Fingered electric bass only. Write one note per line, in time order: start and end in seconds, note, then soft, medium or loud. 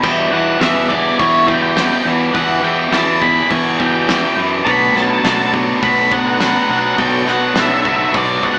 0.03 0.27 E2 loud
0.32 0.56 E2 medium
0.60 1.09 E2 medium
1.19 1.92 E2 loud
2.05 2.30 E2 loud
2.34 2.59 E2 loud
2.63 2.87 E2 loud
2.91 3.40 E2 loud
3.50 4.23 E2 loud
4.37 4.61 F#2 medium
4.67 4.91 B1 loud
4.95 5.19 B1 loud
5.23 5.72 B1 loud
5.82 6.55 B1 loud
6.69 6.93 B1 medium
6.98 7.22 B1 loud
7.27 7.51 B1 medium
7.56 8.04 B1 loud
8.14 8.38 B1 medium
8.43 8.59 C#2 loud